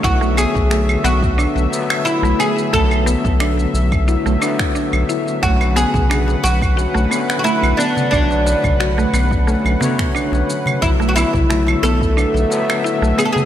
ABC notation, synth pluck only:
X:1
M:4/4
L:1/16
Q:1/4=89
K:Emix
V:1 name="Synth pluck"
E A, B, z A,2 B,2 D z3 E A, B, z | A,2 B,2 D z3 E A, D z D z E z | A,2 B,2 D z3 F A, B, z A,2 B,2 | D z3 F A, B, z A,2 B,2 D z3 |
E A, B, z A,2 B,2 D z3 E A, B, z |]